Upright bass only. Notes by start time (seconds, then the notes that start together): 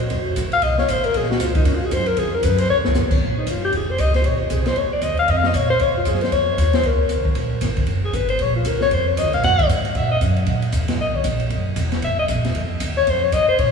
0.10 F1
0.37 A1
0.62 C2
0.88 A1
1.14 A#1
1.40 C#2
1.65 G#2
1.91 F#2
2.17 F2
2.43 F#2
2.70 G#2
2.78 F2
2.86 C#2
2.95 G#1
3.21 A#1
3.47 F#1
3.73 F1
3.99 C#2
4.25 A#1
4.32 G#1
4.41 F1
4.50 C2
4.76 C#2
4.91 muted upright bass stroke
5.02 D#2
5.28 F2
5.54 A#2
5.80 G#2
5.95 muted upright bass stroke
6.06 F#2
6.32 F2
6.57 D#2
6.83 C#2
7.09 C2
7.25 muted upright bass stroke
7.35 A#1
7.62 G#1
7.87 F#1
8.13 G#1
8.39 A#1
8.65 C#2
8.92 F2
9.17 D#2
9.25 C#2
9.34 A#1
9.43 F#2
9.69 G#2
9.95 A#2
10.21 F#2
10.47 A#2
10.72 D#2
10.99 C#2
11.25 A#1
11.50 F#1
11.76 E1
12.03 F#1
12.17 muted upright bass stroke
12.29 A#1
12.35 F#1
12.45 E1
12.54 F2
12.81 D#2
13.07 F2
13.32 A2
13.59 A#2